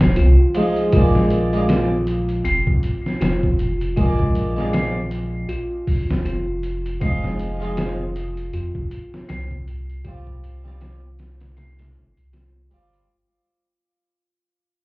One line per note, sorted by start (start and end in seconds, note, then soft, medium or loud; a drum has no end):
0.00 0.16 D#1 medium
0.00 0.14 C4 loud
0.00 snare loud
0.16 0.37 C2 loud
0.16 0.90 F4 loud
0.16 closed hi-hat medium
0.55 0.89 F3 medium
0.55 0.90 G#3 medium
0.55 closed hi-hat medium
0.59 0.91 D#4 loud
0.76 closed hi-hat soft
0.92 2.42 A#1 loud
0.92 1.48 G#3 medium
0.92 1.49 A#3 medium
0.92 1.66 F4 loud
0.92 kick loud
0.92 closed hi-hat medium
0.97 1.50 D4 loud
1.15 snare soft
1.30 closed hi-hat medium
1.53 1.87 G#3 medium
1.53 1.88 A#3 medium
1.53 1.89 D4 medium
1.53 closed hi-hat soft
1.69 2.42 F4 medium
1.69 snare loud
1.69 closed hi-hat medium
2.07 closed hi-hat medium
2.29 closed hi-hat soft
2.45 2.65 F1 medium
2.45 3.18 C4 medium
2.45 closed hi-hat medium
2.67 kick medium
2.83 closed hi-hat medium
3.06 snare soft
3.21 3.94 F1 medium
3.21 3.94 F4 loud
3.21 snare loud
3.21 closed hi-hat medium
3.43 kick medium
3.59 closed hi-hat medium
3.81 closed hi-hat soft
3.96 5.46 A#1 loud
3.96 4.51 G#3 medium
3.96 4.52 A#3 medium
3.96 4.53 D4 loud
3.96 4.69 F4 medium
3.96 kick loud
3.96 closed hi-hat medium
4.19 kick loud
4.35 closed hi-hat medium
4.56 4.90 G#3 medium
4.56 4.91 A#3 medium
4.56 4.92 D4 medium
4.56 snare soft
4.73 5.46 C4 loud
4.73 snare loud
4.73 closed hi-hat medium
5.11 closed hi-hat medium
5.49 6.22 F4 loud
5.49 closed hi-hat medium
5.87 6.07 D2 loud
5.87 kick medium
5.87 open hi-hat medium
6.09 6.23 G#1 medium
6.09 snare loud
6.25 6.98 F1 medium
6.25 6.98 F4 medium
6.25 closed hi-hat medium
6.63 closed hi-hat medium
6.86 closed hi-hat soft
7.01 8.50 F1 loud
7.01 7.55 F3 medium
7.01 7.56 G#3 medium
7.01 7.74 C4 loud
7.01 7.57 D#4 loud
7.01 kick loud
7.01 closed hi-hat medium
7.24 snare soft
7.39 closed hi-hat medium
7.60 7.94 F3 medium
7.60 7.95 G#3 medium
7.60 7.96 D#4 medium
7.60 closed hi-hat soft
7.77 8.50 F4 loud
7.77 snare loud
7.77 closed hi-hat medium
8.16 closed hi-hat medium
8.37 closed hi-hat soft
8.53 8.72 F2 loud
8.53 9.26 F4 medium
8.53 closed hi-hat medium
8.75 kick medium
8.91 closed hi-hat medium
9.14 snare soft
9.29 10.02 C2 medium
9.29 10.01 C4 loud
9.29 snare loud
9.29 closed hi-hat loud
9.51 kick medium
9.68 closed hi-hat medium
9.90 closed hi-hat soft
10.04 11.97 C2 loud
10.04 10.59 G3 medium
10.04 10.60 C4 medium
10.04 10.77 F4 medium
10.04 10.61 F4 loud
10.04 kick loud
10.04 closed hi-hat medium
10.27 kick medium
10.44 closed hi-hat medium
10.64 10.98 G3 medium
10.64 10.99 C4 medium
10.64 11.00 F4 loud
10.64 snare soft
10.81 11.54 F4 medium
10.81 snare loud
10.81 closed hi-hat medium
11.19 snare loud
11.19 closed hi-hat medium
11.40 snare loud
11.40 closed hi-hat medium
11.57 12.29 C4 loud
11.57 snare loud
11.57 closed hi-hat medium
11.79 snare loud
11.79 closed hi-hat medium
11.95 12.14 G1 medium
12.17 12.68 C2 medium
12.17 closed hi-hat medium
12.33 13.05 F4 loud
12.33 snare loud
12.33 closed hi-hat medium
12.70 13.05 G1 medium
12.70 13.05 G3 loud
12.70 13.05 C4 medium
12.70 13.06 F4 loud
12.70 closed hi-hat medium
12.93 closed hi-hat soft